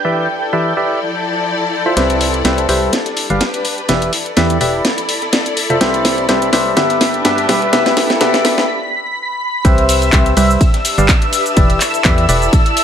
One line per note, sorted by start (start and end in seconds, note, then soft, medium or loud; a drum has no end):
0.00 0.44 D4 medium
0.00 0.44 G4 medium
0.00 0.44 B4 medium
0.00 1.98 G5 medium
0.00 1.98 G6 medium
0.05 0.28 E3 medium
0.05 3.32 E4 medium
0.05 0.28 G4 medium
0.05 0.28 B4 medium
0.05 0.28 D5 medium
0.05 0.28 E5 medium
0.13 3.32 A4 medium
0.13 3.32 D5 medium
0.53 0.74 E3 medium
0.53 0.74 G4 medium
0.53 0.74 B4 medium
0.53 0.74 D5 medium
0.53 0.74 E5 loud
0.77 1.00 G4 medium
0.77 1.00 B4 medium
0.77 1.00 D5 medium
0.77 1.00 E5 medium
1.01 1.97 F3 medium
1.86 1.94 F4 medium
1.86 1.94 A4 medium
1.86 1.94 C5 medium
1.86 1.94 E5 medium
1.97 2.43 C2 medium
1.97 2.42 C4 medium
1.97 2.42 G4 medium
1.97 2.42 B4 medium
1.97 2.42 C5 medium
1.97 2.42 E5 loud
1.97 9.66 B5 medium
1.97 9.66 B6 medium
1.97 snare soft
1.97 closed hi-hat medium
1.97 ride medium
2.10 closed hi-hat medium
2.21 open hi-hat loud
2.21 ride medium
2.34 closed hi-hat soft
2.34 ride soft
2.45 2.67 C2 medium
2.45 2.66 C4 medium
2.45 2.66 G4 medium
2.45 2.66 B4 medium
2.45 2.66 C5 medium
2.45 2.66 E5 medium
2.45 snare loud
2.45 snare soft
2.45 closed hi-hat medium
2.45 ride medium
2.58 closed hi-hat medium
2.69 2.89 C2 medium
2.69 2.92 G3 medium
2.69 2.91 G4 medium
2.69 2.92 B4 medium
2.69 2.92 C5 medium
2.69 2.92 E5 loud
2.69 snare soft
2.69 open hi-hat loud
2.69 ride medium
2.93 4.28 D4 medium
2.93 snare medium
2.93 closed hi-hat medium
2.93 ride medium
3.06 4.28 G4 medium
3.06 snare medium
3.06 closed hi-hat medium
3.17 open hi-hat loud
3.17 ride medium
3.30 3.41 G1 medium
3.30 3.43 G3 medium
3.30 3.43 G4 medium
3.30 3.43 B4 medium
3.30 4.28 B4 medium
3.30 3.43 D5 medium
3.30 3.43 F5 medium
3.30 closed hi-hat soft
3.41 snare loud
3.41 snare medium
3.41 closed hi-hat medium
3.41 ride medium
3.54 closed hi-hat medium
3.54 ride soft
3.65 open hi-hat loud
3.65 ride medium
3.78 closed hi-hat soft
3.89 4.10 E1 medium
3.89 4.12 E3 medium
3.89 7.16 E4 medium
3.89 4.12 G4 medium
3.89 4.12 B4 medium
3.89 4.12 D5 medium
3.89 4.12 E5 medium
3.89 snare medium
3.89 closed hi-hat medium
3.89 ride medium
4.02 closed hi-hat soft
4.02 ride soft
4.08 7.16 A4 medium
4.13 7.16 D5 medium
4.13 open hi-hat loud
4.13 ride medium
4.26 closed hi-hat soft
4.37 4.59 E2 medium
4.37 4.58 E3 loud
4.37 4.58 G4 medium
4.37 4.58 B4 medium
4.37 4.58 D5 medium
4.37 4.58 E5 loud
4.37 snare loud
4.37 snare medium
4.37 closed hi-hat medium
4.37 ride medium
4.50 closed hi-hat soft
4.61 4.81 E1 loud
4.61 4.83 G4 medium
4.61 4.84 B4 medium
4.61 4.83 D5 medium
4.61 4.84 E5 medium
4.61 open hi-hat loud
4.61 ride medium
4.85 snare medium
4.85 closed hi-hat medium
4.85 ride medium
4.98 closed hi-hat medium
4.98 ride soft
5.09 open hi-hat loud
5.09 ride medium
5.22 snare medium
5.22 closed hi-hat soft
5.33 snare loud
5.33 snare medium
5.33 closed hi-hat medium
5.33 ride medium
5.46 closed hi-hat medium
5.57 open hi-hat loud
5.57 ride medium
5.70 5.79 F1 loud
5.70 5.78 F4 medium
5.70 5.78 A4 medium
5.70 5.78 C5 medium
5.70 5.78 E5 loud
5.70 snare soft
5.70 closed hi-hat soft
5.81 6.26 C2 loud
5.81 6.26 C4 medium
5.81 6.26 G4 medium
5.81 6.26 B4 medium
5.81 6.26 C5 medium
5.81 6.26 E5 loud
5.81 snare medium
5.81 closed hi-hat medium
5.81 ride medium
5.94 closed hi-hat medium
6.05 snare medium
6.05 open hi-hat loud
6.05 ride medium
6.18 closed hi-hat soft
6.18 ride soft
6.29 6.51 C2 medium
6.29 6.50 C4 medium
6.29 6.50 G4 medium
6.29 6.50 B4 medium
6.29 6.50 C5 medium
6.29 6.50 E5 medium
6.29 snare loud
6.29 snare medium
6.29 closed hi-hat medium
6.29 ride medium
6.42 closed hi-hat soft
6.53 6.75 C2 loud
6.53 6.75 G3 medium
6.53 6.75 G4 medium
6.53 6.75 B4 medium
6.53 6.75 C5 medium
6.53 6.75 E5 loud
6.53 snare medium
6.53 open hi-hat loud
6.53 ride medium
6.77 7.23 G1 medium
6.77 7.22 B3 medium
6.77 8.12 D4 medium
6.77 7.22 G4 medium
6.77 7.22 B4 medium
6.77 7.22 E5 loud
6.77 snare medium
6.77 closed hi-hat medium
6.77 ride medium
6.85 8.12 G4 medium
6.90 snare medium
6.90 closed hi-hat medium
7.01 snare medium
7.01 open hi-hat loud
7.01 ride medium
7.14 closed hi-hat soft
7.20 8.12 B4 medium
7.25 7.47 G2 loud
7.25 7.46 B3 medium
7.25 7.46 G4 medium
7.25 7.46 B4 medium
7.25 7.46 E5 medium
7.25 snare loud
7.25 snare medium
7.25 closed hi-hat medium
7.25 ride medium
7.38 closed hi-hat medium
7.38 ride soft
7.49 7.71 E1 loud
7.49 7.71 G3 medium
7.49 7.71 G4 medium
7.49 7.71 B4 medium
7.49 7.71 E5 loud
7.49 snare medium
7.49 open hi-hat loud
7.49 ride medium
7.62 closed hi-hat soft
7.73 8.19 E1 loud
7.73 8.18 B3 medium
7.73 8.69 E4 medium
7.73 8.18 G4 medium
7.73 8.18 B4 medium
7.73 8.18 E5 loud
7.73 snare medium
7.73 closed hi-hat medium
7.73 ride medium
7.86 snare medium
7.86 closed hi-hat soft
7.86 ride soft
7.97 8.69 A4 medium
7.97 snare medium
7.97 open hi-hat loud
7.97 ride medium
8.10 snare medium
8.10 closed hi-hat soft
8.17 8.69 D5 medium
8.21 8.67 E1 loud
8.21 8.66 B3 loud
8.21 8.66 G4 medium
8.21 8.66 B4 medium
8.21 8.66 E5 loud
8.21 snare loud
8.21 closed hi-hat medium
8.21 ride medium
8.34 snare medium
8.34 closed hi-hat medium
8.45 snare medium
8.45 open hi-hat loud
8.45 ride medium
8.58 snare medium
9.65 10.11 C2 medium
9.65 10.10 C4 medium
9.65 10.10 G4 medium
9.65 10.10 B4 medium
9.65 10.10 C5 medium
9.65 12.84 E5 medium
9.65 10.10 E5 loud
9.65 12.84 E6 medium
9.65 kick loud
9.65 closed hi-hat medium
9.65 ride medium
9.65 shaker soft
9.78 closed hi-hat medium
9.89 open hi-hat loud
9.89 ride medium
9.89 shaker medium
10.02 closed hi-hat soft
10.02 ride soft
10.02 shaker soft
10.13 10.35 C2 medium
10.13 10.34 C4 medium
10.13 10.34 G4 medium
10.13 10.34 B4 medium
10.13 10.34 C5 medium
10.13 10.34 E5 loud
10.13 kick loud
10.13 snare loud
10.13 clap loud
10.13 closed hi-hat medium
10.13 ride medium
10.13 shaker soft
10.26 closed hi-hat medium
10.37 10.57 C2 loud
10.37 10.60 G3 loud
10.37 10.60 G4 medium
10.37 10.60 B4 medium
10.37 10.60 C5 medium
10.37 10.60 E5 loud
10.37 snare soft
10.37 open hi-hat medium
10.37 ride medium
10.37 shaker medium
10.51 shaker soft
10.61 11.96 D4 medium
10.61 kick loud
10.61 closed hi-hat medium
10.61 ride medium
10.61 shaker soft
10.68 11.96 G4 medium
10.74 snare medium
10.74 closed hi-hat medium
10.85 open hi-hat loud
10.85 ride medium
10.85 shaker medium
10.98 11.09 G1 medium
10.98 11.11 G3 medium
10.98 11.11 G4 medium
10.98 11.11 B4 medium
10.98 11.11 D5 medium
10.98 11.11 F5 medium
10.98 closed hi-hat soft
10.98 shaker soft
11.04 11.96 B4 medium
11.09 kick loud
11.09 snare loud
11.09 clap loud
11.09 closed hi-hat medium
11.09 ride medium
11.09 shaker soft
11.22 closed hi-hat medium
11.22 ride soft
11.33 open hi-hat medium
11.33 ride medium
11.33 shaker medium
11.46 closed hi-hat soft
11.46 shaker soft
11.57 11.78 E1 loud
11.57 11.80 E3 medium
11.57 12.84 E4 medium
11.57 11.80 G4 medium
11.57 11.80 B4 medium
11.57 11.80 D5 medium
11.57 11.80 E5 medium
11.57 kick loud
11.57 closed hi-hat medium
11.57 ride medium
11.57 shaker soft
11.70 closed hi-hat medium
11.70 ride soft
11.80 clap medium
11.80 open hi-hat loud
11.80 ride medium
11.80 shaker medium
11.85 12.84 A4 medium
11.94 closed hi-hat soft
11.94 shaker soft
12.00 12.84 D5 medium
12.05 12.27 E2 medium
12.05 12.26 E3 loud
12.05 12.26 G4 medium
12.05 12.26 B4 medium
12.05 12.26 D5 medium
12.05 12.26 E5 loud
12.05 kick loud
12.05 snare loud
12.05 clap loud
12.05 closed hi-hat medium
12.05 ride medium
12.05 shaker soft
12.18 closed hi-hat medium
12.29 12.49 E1 loud
12.29 12.52 G4 medium
12.29 12.52 B4 medium
12.29 12.52 D5 medium
12.29 12.52 E5 medium
12.29 open hi-hat medium
12.29 ride medium
12.29 shaker medium
12.42 closed hi-hat soft
12.42 shaker soft
12.53 kick loud
12.53 closed hi-hat medium
12.53 ride medium
12.53 shaker soft
12.66 closed hi-hat medium
12.66 ride soft
12.77 open hi-hat loud
12.77 ride medium
12.77 shaker medium